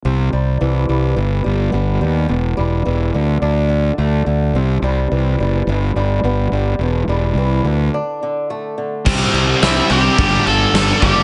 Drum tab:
CC |--------|--------|--------|--------|
SD |--------|--------|--------|--------|
BD |--------|--------|--------|--------|

CC |xxxxxxxx|
SD |--o---o-|
BD |o---o--o|